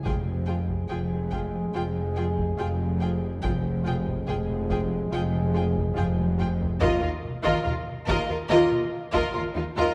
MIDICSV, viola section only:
0, 0, Header, 1, 2, 480
1, 0, Start_track
1, 0, Tempo, 845070
1, 34, Time_signature, 4, 2, 24, 8
1, 5647, End_track
2, 0, Start_track
2, 0, Title_t, "Viola section"
2, 0, Program_c, 0, 48
2, 33, Note_on_c, 0, 65, 60
2, 78, Note_off_c, 0, 65, 0
2, 274, Note_on_c, 0, 65, 53
2, 319, Note_off_c, 0, 65, 0
2, 510, Note_on_c, 0, 65, 53
2, 555, Note_off_c, 0, 65, 0
2, 751, Note_on_c, 0, 65, 49
2, 796, Note_off_c, 0, 65, 0
2, 989, Note_on_c, 0, 65, 62
2, 1034, Note_off_c, 0, 65, 0
2, 1229, Note_on_c, 0, 65, 57
2, 1274, Note_off_c, 0, 65, 0
2, 1470, Note_on_c, 0, 65, 68
2, 1515, Note_off_c, 0, 65, 0
2, 1714, Note_on_c, 0, 65, 54
2, 1760, Note_off_c, 0, 65, 0
2, 1950, Note_on_c, 0, 65, 67
2, 1995, Note_off_c, 0, 65, 0
2, 2187, Note_on_c, 0, 65, 58
2, 2233, Note_off_c, 0, 65, 0
2, 2423, Note_on_c, 0, 65, 57
2, 2468, Note_off_c, 0, 65, 0
2, 2666, Note_on_c, 0, 65, 60
2, 2711, Note_off_c, 0, 65, 0
2, 2903, Note_on_c, 0, 65, 69
2, 2949, Note_off_c, 0, 65, 0
2, 3146, Note_on_c, 0, 65, 62
2, 3191, Note_off_c, 0, 65, 0
2, 3380, Note_on_c, 0, 65, 72
2, 3426, Note_off_c, 0, 65, 0
2, 3625, Note_on_c, 0, 65, 57
2, 3670, Note_off_c, 0, 65, 0
2, 3864, Note_on_c, 0, 65, 93
2, 3977, Note_off_c, 0, 65, 0
2, 3983, Note_on_c, 0, 65, 61
2, 4029, Note_off_c, 0, 65, 0
2, 4227, Note_on_c, 0, 65, 90
2, 4341, Note_off_c, 0, 65, 0
2, 4348, Note_on_c, 0, 65, 60
2, 4393, Note_off_c, 0, 65, 0
2, 4589, Note_on_c, 0, 65, 77
2, 4701, Note_off_c, 0, 65, 0
2, 4708, Note_on_c, 0, 65, 59
2, 4753, Note_off_c, 0, 65, 0
2, 4827, Note_on_c, 0, 65, 90
2, 4942, Note_off_c, 0, 65, 0
2, 5186, Note_on_c, 0, 65, 84
2, 5301, Note_off_c, 0, 65, 0
2, 5307, Note_on_c, 0, 65, 73
2, 5352, Note_off_c, 0, 65, 0
2, 5432, Note_on_c, 0, 65, 65
2, 5477, Note_off_c, 0, 65, 0
2, 5549, Note_on_c, 0, 65, 78
2, 5647, Note_off_c, 0, 65, 0
2, 5647, End_track
0, 0, End_of_file